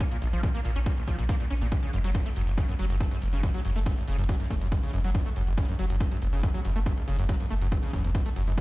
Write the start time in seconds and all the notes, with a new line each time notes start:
0.00 C#4, kick, closed hi-hat
0.11 A#2, closed hi-hat
0.22 A#1, open hi-hat
0.33 A#1 F3, closed hi-hat
0.43 A#2, kick, closed hi-hat
0.54 A#3, closed hi-hat
0.65 A#1 A#2, open hi-hat
0.76 A#1 C#4, closed hi-hat
0.86 A#2, kick, closed hi-hat
0.97 A#1, closed hi-hat
1.08 A#1 F3, kick, open hi-hat
1.19 A#1 A#2, closed hi-hat
1.29 A#3, kick, closed hi-hat
1.40 A#2, closed hi-hat
1.50 A#1 C#4, open hi-hat
1.61 A#1 A#2, open hi-hat
1.72 F#1, kick, closed hi-hat
1.83 C#3, closed hi-hat
1.93 F#1 F#2, open hi-hat
2.04 F#1 F#3, closed hi-hat
2.15 F#2, kick, closed hi-hat
2.26 A3, closed hi-hat
2.36 F#1 F#2, open hi-hat
2.47 F#1, closed hi-hat
2.58 C#3, kick, closed hi-hat
2.69 F#2, closed hi-hat
2.79 F#1 F#3, open hi-hat
2.90 F#1 F#2, closed hi-hat
3.00 A3, kick, closed hi-hat
3.11 F#2, closed hi-hat
3.22 F#1, open hi-hat
3.33 F#1 C#3, closed hi-hat
3.43 F#2, kick, closed hi-hat
3.54 F#3, closed hi-hat
3.65 F#1 F#2, open hi-hat
3.76 F#1 A3, closed hi-hat
3.86 F#2, kick, closed hi-hat
3.97 F#1, closed hi-hat
4.08 F#1 C#3, open hi-hat
4.19 F#1 F#2, closed hi-hat
4.29 F#3, kick, closed hi-hat
4.40 F#2, closed hi-hat
4.50 F#1 A3, kick, open hi-hat
4.61 F#1 F#2, closed hi-hat
4.72 F#1, kick, closed hi-hat
4.83 C#3, closed hi-hat
4.93 F#1 F#2, open hi-hat
5.04 F#1 F#3, open hi-hat
5.15 F#2, kick, closed hi-hat
5.26 A3, closed hi-hat
5.36 F#1 F#2, open hi-hat
5.47 F#1, closed hi-hat
5.58 C#3, kick, closed hi-hat
5.69 F#2, closed hi-hat
5.79 F#1 F#3, open hi-hat
5.90 F#1 F#2, closed hi-hat
6.00 A3, kick, closed hi-hat
6.11 F#2, closed hi-hat
6.22 F#1, open hi-hat
6.33 F#1 C#3, closed hi-hat
6.43 F#2, kick, closed hi-hat
6.54 F#3, closed hi-hat
6.65 F#1 F#2, open hi-hat
6.76 F#1 A3, closed hi-hat
6.86 F#2, kick, closed hi-hat
6.97 F#1, closed hi-hat
7.08 F#1 C#3, open hi-hat
7.19 F#1 F#2, closed hi-hat
7.29 F#3, kick, closed hi-hat
7.40 F#2, closed hi-hat
7.50 F#1 A3, open hi-hat
7.61 F#1 F#2, closed hi-hat
7.72 F#1, kick, closed hi-hat
7.83 C#3, closed hi-hat
7.93 F#1 F#2, kick, open hi-hat
8.04 F#1 E2, closed hi-hat
8.15 F#2, kick, closed hi-hat
8.26 A3, closed hi-hat
8.36 F#1 F#2, open hi-hat
8.47 F#1 F#2, open hi-hat
8.58 A#2, kick, closed hi-hat